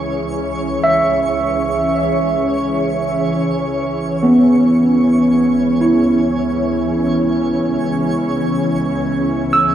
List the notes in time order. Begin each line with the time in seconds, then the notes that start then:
Already playing: C#2 E3 C#4 G#4 C#5 C#6
0.84 E5
4.23 B3
4.62 C#2 G#5
5.81 E4
9.53 E6